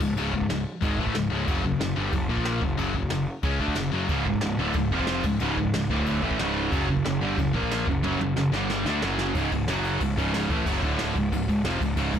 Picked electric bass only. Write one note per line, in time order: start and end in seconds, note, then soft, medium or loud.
0.00 0.16 C#1 medium
0.16 0.32 C#1 medium
0.33 0.49 C#1 medium
0.49 0.65 C#1 medium
0.82 0.98 G#1 medium
0.99 1.14 A1 medium
1.15 1.30 C#1 medium
1.30 1.46 C#1 medium
1.48 1.63 F#1 loud
1.64 1.79 F#1 medium
1.80 1.96 F#1 medium
1.96 2.12 G1 loud
2.13 2.28 F#1 medium
2.29 2.60 A#1 medium
2.62 2.77 F#1 medium
2.78 2.94 F#1 loud
2.94 3.10 F#1 medium
3.11 3.26 F#1 medium
3.43 3.59 C#2 medium
3.60 3.75 D2 medium
3.76 3.92 F#1 medium
3.92 4.08 F#1 loud
4.09 4.25 C#1 medium
4.25 4.41 C#1 medium
4.42 4.57 C#1 medium
4.59 4.74 D1 loud
4.74 4.90 C#1 medium
4.91 5.22 F1 loud
5.24 5.39 C#1 medium
5.41 5.56 C#1 loud
5.57 5.72 C#1 medium
5.74 5.89 C#1 medium
5.90 6.21 D1 loud
6.22 6.38 A1 loud
6.40 6.70 C#1 loud
6.72 6.87 F#1 loud
6.89 7.04 F#1 medium
7.05 7.20 F#1 medium
7.22 7.37 G1 loud
7.38 7.53 F#1 medium
7.54 7.85 A#1 medium
7.87 8.02 F#1 medium
8.03 8.18 F#1 loud
8.19 8.35 F#1 medium
8.36 8.51 F#1 medium
8.52 8.83 G1 loud
8.85 9.00 D2 loud
9.03 9.33 F#1 loud
9.35 9.50 C#1 loud
9.52 9.67 C#1 medium
9.68 9.98 F#1 loud
10.01 10.16 C#1 medium
10.17 10.48 C#1 loud
10.50 10.65 A1 medium
10.66 10.81 F#1 medium
10.83 11.13 D1 medium
11.15 11.31 C#1 medium
11.32 11.47 C#1 medium
11.49 11.64 C#1 medium
11.64 11.80 F1 loud
11.81 11.96 C#1 medium
11.97 12.13 C#1 loud
12.14 12.19 C#1 medium